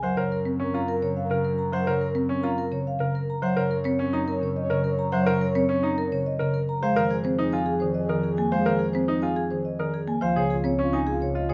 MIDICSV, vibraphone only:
0, 0, Header, 1, 2, 480
1, 0, Start_track
1, 0, Tempo, 566038
1, 25, Time_signature, 3, 2, 24, 8
1, 9784, End_track
2, 0, Start_track
2, 0, Title_t, "Vibraphone"
2, 0, Program_c, 0, 11
2, 29, Note_on_c, 0, 78, 70
2, 145, Note_on_c, 0, 73, 52
2, 182, Note_off_c, 0, 78, 0
2, 272, Note_on_c, 0, 70, 54
2, 301, Note_off_c, 0, 73, 0
2, 423, Note_off_c, 0, 70, 0
2, 631, Note_on_c, 0, 82, 58
2, 750, Note_on_c, 0, 70, 68
2, 783, Note_off_c, 0, 82, 0
2, 868, Note_on_c, 0, 73, 51
2, 903, Note_off_c, 0, 70, 0
2, 989, Note_on_c, 0, 77, 47
2, 1022, Note_off_c, 0, 73, 0
2, 1142, Note_off_c, 0, 77, 0
2, 1226, Note_on_c, 0, 70, 51
2, 1343, Note_on_c, 0, 82, 51
2, 1381, Note_off_c, 0, 70, 0
2, 1468, Note_on_c, 0, 78, 63
2, 1500, Note_off_c, 0, 82, 0
2, 1587, Note_on_c, 0, 73, 54
2, 1622, Note_off_c, 0, 78, 0
2, 1708, Note_on_c, 0, 70, 62
2, 1741, Note_off_c, 0, 73, 0
2, 1862, Note_off_c, 0, 70, 0
2, 2063, Note_on_c, 0, 82, 58
2, 2189, Note_on_c, 0, 70, 68
2, 2220, Note_off_c, 0, 82, 0
2, 2307, Note_on_c, 0, 73, 53
2, 2342, Note_off_c, 0, 70, 0
2, 2436, Note_on_c, 0, 77, 52
2, 2462, Note_off_c, 0, 73, 0
2, 2585, Note_off_c, 0, 77, 0
2, 2672, Note_on_c, 0, 70, 55
2, 2796, Note_on_c, 0, 82, 60
2, 2823, Note_off_c, 0, 70, 0
2, 2910, Note_on_c, 0, 78, 73
2, 2945, Note_off_c, 0, 82, 0
2, 3026, Note_on_c, 0, 73, 58
2, 3063, Note_off_c, 0, 78, 0
2, 3146, Note_on_c, 0, 70, 61
2, 3181, Note_off_c, 0, 73, 0
2, 3260, Note_on_c, 0, 73, 73
2, 3301, Note_off_c, 0, 70, 0
2, 3419, Note_off_c, 0, 73, 0
2, 3506, Note_on_c, 0, 82, 62
2, 3627, Note_on_c, 0, 70, 69
2, 3661, Note_off_c, 0, 82, 0
2, 3756, Note_on_c, 0, 73, 57
2, 3782, Note_off_c, 0, 70, 0
2, 3871, Note_on_c, 0, 75, 60
2, 3905, Note_off_c, 0, 73, 0
2, 4023, Note_off_c, 0, 75, 0
2, 4106, Note_on_c, 0, 70, 59
2, 4230, Note_on_c, 0, 82, 63
2, 4261, Note_off_c, 0, 70, 0
2, 4342, Note_on_c, 0, 78, 79
2, 4383, Note_off_c, 0, 82, 0
2, 4472, Note_on_c, 0, 73, 65
2, 4500, Note_off_c, 0, 78, 0
2, 4591, Note_on_c, 0, 70, 63
2, 4624, Note_off_c, 0, 73, 0
2, 4709, Note_on_c, 0, 73, 76
2, 4743, Note_off_c, 0, 70, 0
2, 4862, Note_off_c, 0, 73, 0
2, 4950, Note_on_c, 0, 82, 67
2, 5071, Note_on_c, 0, 70, 74
2, 5103, Note_off_c, 0, 82, 0
2, 5190, Note_on_c, 0, 73, 64
2, 5223, Note_off_c, 0, 70, 0
2, 5312, Note_on_c, 0, 75, 60
2, 5343, Note_off_c, 0, 73, 0
2, 5463, Note_off_c, 0, 75, 0
2, 5546, Note_on_c, 0, 70, 56
2, 5673, Note_on_c, 0, 82, 69
2, 5701, Note_off_c, 0, 70, 0
2, 5790, Note_on_c, 0, 77, 76
2, 5824, Note_off_c, 0, 82, 0
2, 5911, Note_on_c, 0, 72, 58
2, 5943, Note_off_c, 0, 77, 0
2, 6026, Note_on_c, 0, 68, 64
2, 6063, Note_off_c, 0, 72, 0
2, 6138, Note_on_c, 0, 72, 76
2, 6181, Note_off_c, 0, 68, 0
2, 6298, Note_off_c, 0, 72, 0
2, 6382, Note_on_c, 0, 80, 64
2, 6495, Note_on_c, 0, 68, 72
2, 6540, Note_off_c, 0, 80, 0
2, 6616, Note_on_c, 0, 72, 58
2, 6657, Note_off_c, 0, 68, 0
2, 6736, Note_on_c, 0, 75, 58
2, 6778, Note_off_c, 0, 72, 0
2, 6898, Note_off_c, 0, 75, 0
2, 6983, Note_on_c, 0, 68, 53
2, 7101, Note_on_c, 0, 80, 60
2, 7140, Note_off_c, 0, 68, 0
2, 7222, Note_on_c, 0, 77, 64
2, 7259, Note_off_c, 0, 80, 0
2, 7338, Note_on_c, 0, 72, 56
2, 7380, Note_off_c, 0, 77, 0
2, 7453, Note_on_c, 0, 68, 58
2, 7498, Note_off_c, 0, 72, 0
2, 7576, Note_on_c, 0, 72, 69
2, 7617, Note_off_c, 0, 68, 0
2, 7738, Note_off_c, 0, 72, 0
2, 7817, Note_on_c, 0, 80, 57
2, 7940, Note_on_c, 0, 68, 63
2, 7978, Note_off_c, 0, 80, 0
2, 8061, Note_on_c, 0, 72, 55
2, 8099, Note_off_c, 0, 68, 0
2, 8183, Note_on_c, 0, 75, 48
2, 8219, Note_off_c, 0, 72, 0
2, 8340, Note_off_c, 0, 75, 0
2, 8427, Note_on_c, 0, 68, 53
2, 8545, Note_on_c, 0, 80, 50
2, 8582, Note_off_c, 0, 68, 0
2, 8667, Note_on_c, 0, 77, 69
2, 8701, Note_off_c, 0, 80, 0
2, 8791, Note_on_c, 0, 73, 55
2, 8821, Note_off_c, 0, 77, 0
2, 8907, Note_on_c, 0, 68, 57
2, 8943, Note_off_c, 0, 73, 0
2, 9031, Note_on_c, 0, 73, 69
2, 9062, Note_off_c, 0, 68, 0
2, 9183, Note_off_c, 0, 73, 0
2, 9271, Note_on_c, 0, 80, 58
2, 9385, Note_on_c, 0, 68, 66
2, 9423, Note_off_c, 0, 80, 0
2, 9514, Note_on_c, 0, 73, 55
2, 9541, Note_off_c, 0, 68, 0
2, 9627, Note_on_c, 0, 75, 50
2, 9664, Note_off_c, 0, 73, 0
2, 9750, Note_on_c, 0, 73, 67
2, 9782, Note_off_c, 0, 75, 0
2, 9784, Note_off_c, 0, 73, 0
2, 9784, End_track
0, 0, End_of_file